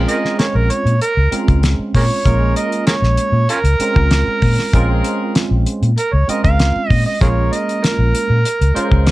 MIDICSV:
0, 0, Header, 1, 7, 480
1, 0, Start_track
1, 0, Key_signature, -5, "minor"
1, 0, Tempo, 619195
1, 1748, Time_signature, 4, 2, 24, 8
1, 7065, End_track
2, 0, Start_track
2, 0, Title_t, "Harmonica"
2, 0, Program_c, 0, 22
2, 66, Note_on_c, 0, 70, 62
2, 66, Note_on_c, 0, 75, 89
2, 134, Note_off_c, 0, 70, 0
2, 297, Note_off_c, 0, 75, 0
2, 302, Note_on_c, 0, 68, 53
2, 302, Note_on_c, 0, 70, 53
2, 302, Note_on_c, 0, 73, 75
2, 349, Note_off_c, 0, 70, 0
2, 355, Note_off_c, 0, 68, 0
2, 438, Note_on_c, 0, 70, 82
2, 449, Note_off_c, 0, 73, 0
2, 552, Note_on_c, 0, 73, 72
2, 563, Note_off_c, 0, 70, 0
2, 782, Note_off_c, 0, 73, 0
2, 786, Note_on_c, 0, 70, 94
2, 1020, Note_off_c, 0, 70, 0
2, 1520, Note_on_c, 0, 68, 68
2, 1520, Note_on_c, 0, 70, 68
2, 1520, Note_on_c, 0, 73, 97
2, 1568, Note_off_c, 0, 68, 0
2, 1586, Note_off_c, 0, 70, 0
2, 1980, Note_off_c, 0, 73, 0
2, 1987, Note_on_c, 0, 75, 67
2, 2219, Note_off_c, 0, 75, 0
2, 2224, Note_on_c, 0, 68, 65
2, 2224, Note_on_c, 0, 70, 65
2, 2224, Note_on_c, 0, 73, 92
2, 2283, Note_off_c, 0, 70, 0
2, 2290, Note_off_c, 0, 68, 0
2, 2692, Note_off_c, 0, 73, 0
2, 2713, Note_on_c, 0, 61, 76
2, 2713, Note_on_c, 0, 65, 76
2, 2713, Note_on_c, 0, 70, 109
2, 2774, Note_off_c, 0, 65, 0
2, 2782, Note_off_c, 0, 61, 0
2, 4121, Note_off_c, 0, 70, 0
2, 4637, Note_on_c, 0, 70, 84
2, 4752, Note_on_c, 0, 73, 74
2, 4763, Note_off_c, 0, 70, 0
2, 4861, Note_off_c, 0, 73, 0
2, 4880, Note_on_c, 0, 75, 78
2, 4987, Note_off_c, 0, 75, 0
2, 4992, Note_on_c, 0, 77, 93
2, 5341, Note_off_c, 0, 77, 0
2, 5341, Note_on_c, 0, 75, 93
2, 5458, Note_off_c, 0, 75, 0
2, 5477, Note_on_c, 0, 75, 82
2, 5583, Note_off_c, 0, 75, 0
2, 5592, Note_on_c, 0, 68, 63
2, 5592, Note_on_c, 0, 70, 63
2, 5592, Note_on_c, 0, 73, 90
2, 5639, Note_off_c, 0, 68, 0
2, 5645, Note_off_c, 0, 70, 0
2, 5834, Note_on_c, 0, 75, 82
2, 5846, Note_off_c, 0, 73, 0
2, 6078, Note_on_c, 0, 70, 100
2, 6090, Note_off_c, 0, 75, 0
2, 7003, Note_off_c, 0, 70, 0
2, 7065, End_track
3, 0, Start_track
3, 0, Title_t, "Horn section"
3, 0, Program_c, 1, 61
3, 0, Note_on_c, 1, 68, 81
3, 0, Note_on_c, 1, 70, 96
3, 302, Note_off_c, 1, 70, 0
3, 304, Note_off_c, 1, 68, 0
3, 1018, Note_on_c, 1, 68, 64
3, 1018, Note_on_c, 1, 70, 80
3, 1387, Note_off_c, 1, 68, 0
3, 1387, Note_off_c, 1, 70, 0
3, 1747, Note_on_c, 1, 68, 71
3, 1749, Note_on_c, 1, 70, 87
3, 2228, Note_off_c, 1, 68, 0
3, 2229, Note_off_c, 1, 70, 0
3, 2955, Note_on_c, 1, 68, 62
3, 2955, Note_on_c, 1, 70, 77
3, 3316, Note_off_c, 1, 68, 0
3, 3316, Note_off_c, 1, 70, 0
3, 3675, Note_on_c, 1, 70, 104
3, 3678, Note_on_c, 1, 68, 84
3, 4153, Note_off_c, 1, 70, 0
3, 4154, Note_off_c, 1, 68, 0
3, 4878, Note_on_c, 1, 68, 63
3, 4878, Note_on_c, 1, 70, 81
3, 5237, Note_off_c, 1, 68, 0
3, 5237, Note_off_c, 1, 70, 0
3, 5592, Note_on_c, 1, 68, 71
3, 5598, Note_on_c, 1, 70, 84
3, 6070, Note_off_c, 1, 68, 0
3, 6073, Note_off_c, 1, 70, 0
3, 6777, Note_on_c, 1, 70, 92
3, 6778, Note_on_c, 1, 68, 75
3, 7065, Note_off_c, 1, 68, 0
3, 7065, Note_off_c, 1, 70, 0
3, 7065, End_track
4, 0, Start_track
4, 0, Title_t, "Tine electric piano"
4, 0, Program_c, 2, 4
4, 0, Note_on_c, 2, 56, 84
4, 0, Note_on_c, 2, 60, 76
4, 0, Note_on_c, 2, 61, 71
4, 0, Note_on_c, 2, 65, 88
4, 727, Note_off_c, 2, 56, 0
4, 729, Note_off_c, 2, 60, 0
4, 730, Note_off_c, 2, 61, 0
4, 734, Note_off_c, 2, 65, 0
4, 1016, Note_on_c, 2, 56, 67
4, 1021, Note_on_c, 2, 60, 61
4, 1028, Note_on_c, 2, 61, 60
4, 1032, Note_on_c, 2, 65, 68
4, 1702, Note_off_c, 2, 56, 0
4, 1704, Note_off_c, 2, 60, 0
4, 1707, Note_off_c, 2, 61, 0
4, 1709, Note_off_c, 2, 65, 0
4, 1743, Note_on_c, 2, 56, 68
4, 1750, Note_on_c, 2, 58, 64
4, 1752, Note_on_c, 2, 61, 67
4, 1758, Note_on_c, 2, 65, 77
4, 2652, Note_off_c, 2, 56, 0
4, 2656, Note_off_c, 2, 58, 0
4, 2656, Note_off_c, 2, 61, 0
4, 2660, Note_off_c, 2, 65, 0
4, 2942, Note_on_c, 2, 56, 65
4, 2948, Note_on_c, 2, 60, 63
4, 2953, Note_on_c, 2, 61, 59
4, 2957, Note_on_c, 2, 65, 74
4, 3625, Note_off_c, 2, 56, 0
4, 3628, Note_off_c, 2, 60, 0
4, 3631, Note_off_c, 2, 61, 0
4, 3633, Note_off_c, 2, 65, 0
4, 3669, Note_on_c, 2, 56, 85
4, 3671, Note_on_c, 2, 60, 79
4, 3673, Note_on_c, 2, 61, 78
4, 3684, Note_on_c, 2, 65, 99
4, 4574, Note_off_c, 2, 56, 0
4, 4576, Note_off_c, 2, 60, 0
4, 4577, Note_off_c, 2, 61, 0
4, 4582, Note_off_c, 2, 65, 0
4, 4867, Note_on_c, 2, 56, 64
4, 4869, Note_on_c, 2, 60, 59
4, 4875, Note_on_c, 2, 61, 59
4, 4881, Note_on_c, 2, 65, 73
4, 5546, Note_off_c, 2, 56, 0
4, 5548, Note_off_c, 2, 60, 0
4, 5550, Note_off_c, 2, 61, 0
4, 5554, Note_off_c, 2, 65, 0
4, 5585, Note_on_c, 2, 56, 67
4, 5588, Note_on_c, 2, 58, 65
4, 5593, Note_on_c, 2, 61, 62
4, 5599, Note_on_c, 2, 65, 79
4, 6491, Note_off_c, 2, 56, 0
4, 6492, Note_off_c, 2, 58, 0
4, 6495, Note_off_c, 2, 61, 0
4, 6498, Note_off_c, 2, 65, 0
4, 6777, Note_on_c, 2, 56, 74
4, 6784, Note_on_c, 2, 72, 76
4, 6785, Note_on_c, 2, 73, 61
4, 6786, Note_on_c, 2, 61, 67
4, 6791, Note_on_c, 2, 65, 85
4, 7008, Note_off_c, 2, 73, 0
4, 7020, Note_on_c, 2, 77, 67
4, 7065, Note_off_c, 2, 56, 0
4, 7065, Note_off_c, 2, 61, 0
4, 7065, Note_off_c, 2, 65, 0
4, 7065, Note_off_c, 2, 72, 0
4, 7065, Note_off_c, 2, 77, 0
4, 7065, End_track
5, 0, Start_track
5, 0, Title_t, "Fingered electric bass"
5, 0, Program_c, 3, 33
5, 426, Note_on_c, 3, 34, 83
5, 531, Note_off_c, 3, 34, 0
5, 662, Note_on_c, 3, 46, 76
5, 769, Note_off_c, 3, 46, 0
5, 907, Note_on_c, 3, 37, 80
5, 1012, Note_off_c, 3, 37, 0
5, 1151, Note_on_c, 3, 37, 81
5, 1363, Note_off_c, 3, 37, 0
5, 1507, Note_on_c, 3, 46, 86
5, 1617, Note_off_c, 3, 46, 0
5, 1745, Note_on_c, 3, 34, 87
5, 1959, Note_off_c, 3, 34, 0
5, 2342, Note_on_c, 3, 34, 79
5, 2450, Note_off_c, 3, 34, 0
5, 2575, Note_on_c, 3, 46, 80
5, 2686, Note_off_c, 3, 46, 0
5, 2820, Note_on_c, 3, 37, 77
5, 2929, Note_off_c, 3, 37, 0
5, 3069, Note_on_c, 3, 37, 83
5, 3283, Note_off_c, 3, 37, 0
5, 3426, Note_on_c, 3, 46, 86
5, 3537, Note_off_c, 3, 46, 0
5, 3671, Note_on_c, 3, 34, 90
5, 3883, Note_off_c, 3, 34, 0
5, 4271, Note_on_c, 3, 34, 84
5, 4375, Note_off_c, 3, 34, 0
5, 4513, Note_on_c, 3, 46, 77
5, 4616, Note_off_c, 3, 46, 0
5, 4754, Note_on_c, 3, 37, 82
5, 4857, Note_off_c, 3, 37, 0
5, 4994, Note_on_c, 3, 37, 78
5, 5205, Note_off_c, 3, 37, 0
5, 5352, Note_on_c, 3, 46, 85
5, 5460, Note_off_c, 3, 46, 0
5, 5592, Note_on_c, 3, 34, 87
5, 5802, Note_off_c, 3, 34, 0
5, 6191, Note_on_c, 3, 34, 78
5, 6294, Note_off_c, 3, 34, 0
5, 6432, Note_on_c, 3, 46, 73
5, 6534, Note_off_c, 3, 46, 0
5, 6676, Note_on_c, 3, 37, 83
5, 6776, Note_off_c, 3, 37, 0
5, 6913, Note_on_c, 3, 37, 84
5, 7065, Note_off_c, 3, 37, 0
5, 7065, End_track
6, 0, Start_track
6, 0, Title_t, "Muted fingered electric bass strokes"
6, 2940, Note_on_c, 9, 29, 35
6, 3018, Note_off_c, 9, 29, 0
6, 5240, Note_on_c, 9, 29, 34
6, 5317, Note_off_c, 9, 29, 0
6, 6793, Note_on_c, 9, 29, 33
6, 6870, Note_off_c, 9, 29, 0
6, 7065, End_track
7, 0, Start_track
7, 0, Title_t, "Drums"
7, 65, Note_on_c, 9, 42, 57
7, 143, Note_off_c, 9, 42, 0
7, 192, Note_on_c, 9, 38, 29
7, 270, Note_off_c, 9, 38, 0
7, 303, Note_on_c, 9, 42, 70
7, 308, Note_on_c, 9, 38, 92
7, 380, Note_off_c, 9, 42, 0
7, 385, Note_off_c, 9, 38, 0
7, 544, Note_on_c, 9, 42, 54
7, 621, Note_off_c, 9, 42, 0
7, 672, Note_on_c, 9, 42, 33
7, 749, Note_off_c, 9, 42, 0
7, 787, Note_on_c, 9, 42, 72
7, 864, Note_off_c, 9, 42, 0
7, 1026, Note_on_c, 9, 42, 61
7, 1103, Note_off_c, 9, 42, 0
7, 1150, Note_on_c, 9, 36, 83
7, 1150, Note_on_c, 9, 42, 36
7, 1227, Note_off_c, 9, 42, 0
7, 1228, Note_off_c, 9, 36, 0
7, 1265, Note_on_c, 9, 42, 76
7, 1269, Note_on_c, 9, 38, 98
7, 1342, Note_off_c, 9, 42, 0
7, 1347, Note_off_c, 9, 38, 0
7, 1508, Note_on_c, 9, 36, 79
7, 1509, Note_on_c, 9, 46, 73
7, 1586, Note_off_c, 9, 36, 0
7, 1586, Note_off_c, 9, 46, 0
7, 1748, Note_on_c, 9, 36, 102
7, 1749, Note_on_c, 9, 42, 78
7, 1826, Note_off_c, 9, 36, 0
7, 1826, Note_off_c, 9, 42, 0
7, 1987, Note_on_c, 9, 42, 54
7, 2065, Note_off_c, 9, 42, 0
7, 2111, Note_on_c, 9, 42, 35
7, 2188, Note_off_c, 9, 42, 0
7, 2223, Note_on_c, 9, 42, 81
7, 2228, Note_on_c, 9, 38, 105
7, 2301, Note_off_c, 9, 42, 0
7, 2306, Note_off_c, 9, 38, 0
7, 2352, Note_on_c, 9, 38, 33
7, 2429, Note_off_c, 9, 38, 0
7, 2461, Note_on_c, 9, 42, 56
7, 2538, Note_off_c, 9, 42, 0
7, 2706, Note_on_c, 9, 42, 79
7, 2784, Note_off_c, 9, 42, 0
7, 2827, Note_on_c, 9, 42, 39
7, 2904, Note_off_c, 9, 42, 0
7, 2944, Note_on_c, 9, 42, 61
7, 3022, Note_off_c, 9, 42, 0
7, 3070, Note_on_c, 9, 36, 81
7, 3148, Note_off_c, 9, 36, 0
7, 3184, Note_on_c, 9, 42, 87
7, 3188, Note_on_c, 9, 38, 101
7, 3261, Note_off_c, 9, 42, 0
7, 3266, Note_off_c, 9, 38, 0
7, 3426, Note_on_c, 9, 46, 79
7, 3429, Note_on_c, 9, 36, 81
7, 3503, Note_off_c, 9, 46, 0
7, 3506, Note_off_c, 9, 36, 0
7, 3557, Note_on_c, 9, 38, 31
7, 3634, Note_off_c, 9, 38, 0
7, 3671, Note_on_c, 9, 36, 104
7, 3672, Note_on_c, 9, 42, 83
7, 3748, Note_off_c, 9, 36, 0
7, 3749, Note_off_c, 9, 42, 0
7, 3910, Note_on_c, 9, 42, 59
7, 3988, Note_off_c, 9, 42, 0
7, 4150, Note_on_c, 9, 42, 72
7, 4154, Note_on_c, 9, 38, 107
7, 4227, Note_off_c, 9, 42, 0
7, 4232, Note_off_c, 9, 38, 0
7, 4391, Note_on_c, 9, 42, 55
7, 4469, Note_off_c, 9, 42, 0
7, 4517, Note_on_c, 9, 42, 36
7, 4594, Note_off_c, 9, 42, 0
7, 4633, Note_on_c, 9, 42, 73
7, 4711, Note_off_c, 9, 42, 0
7, 4875, Note_on_c, 9, 42, 60
7, 4953, Note_off_c, 9, 42, 0
7, 4996, Note_on_c, 9, 36, 84
7, 4999, Note_on_c, 9, 42, 38
7, 5074, Note_off_c, 9, 36, 0
7, 5077, Note_off_c, 9, 42, 0
7, 5113, Note_on_c, 9, 42, 77
7, 5117, Note_on_c, 9, 38, 99
7, 5190, Note_off_c, 9, 42, 0
7, 5195, Note_off_c, 9, 38, 0
7, 5352, Note_on_c, 9, 36, 80
7, 5353, Note_on_c, 9, 46, 70
7, 5430, Note_off_c, 9, 36, 0
7, 5430, Note_off_c, 9, 46, 0
7, 5592, Note_on_c, 9, 36, 109
7, 5594, Note_on_c, 9, 42, 77
7, 5670, Note_off_c, 9, 36, 0
7, 5672, Note_off_c, 9, 42, 0
7, 5836, Note_on_c, 9, 42, 56
7, 5914, Note_off_c, 9, 42, 0
7, 5962, Note_on_c, 9, 42, 36
7, 6039, Note_off_c, 9, 42, 0
7, 6076, Note_on_c, 9, 42, 76
7, 6081, Note_on_c, 9, 38, 93
7, 6154, Note_off_c, 9, 42, 0
7, 6159, Note_off_c, 9, 38, 0
7, 6315, Note_on_c, 9, 42, 61
7, 6393, Note_off_c, 9, 42, 0
7, 6553, Note_on_c, 9, 42, 83
7, 6631, Note_off_c, 9, 42, 0
7, 6679, Note_on_c, 9, 42, 37
7, 6756, Note_off_c, 9, 42, 0
7, 6793, Note_on_c, 9, 42, 62
7, 6871, Note_off_c, 9, 42, 0
7, 6911, Note_on_c, 9, 36, 80
7, 6989, Note_off_c, 9, 36, 0
7, 7028, Note_on_c, 9, 42, 80
7, 7033, Note_on_c, 9, 38, 101
7, 7065, Note_off_c, 9, 38, 0
7, 7065, Note_off_c, 9, 42, 0
7, 7065, End_track
0, 0, End_of_file